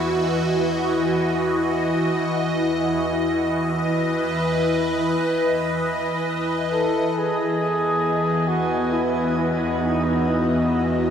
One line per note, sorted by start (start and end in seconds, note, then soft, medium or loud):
0.00 1.92 E2 medium
0.00 1.97 E3 medium
0.00 7.18 E3 medium
0.00 7.18 E4 medium
0.00 7.27 E4 medium
0.00 3.44 F#4 medium
0.00 11.10 D#5 medium
1.97 7.14 E2 medium
1.97 11.10 E3 medium
3.04 8.43 B4 medium
6.73 7.20 A4 medium
7.17 11.10 E2 medium
7.17 11.10 E3 medium
7.17 11.10 B3 medium
7.17 8.49 G#4 medium
7.50 11.10 B3 medium
8.10 11.10 F#4 medium
8.48 8.94 F#4 medium
8.93 9.35 E4 medium
9.36 9.83 E4 medium
9.81 10.84 D#4 medium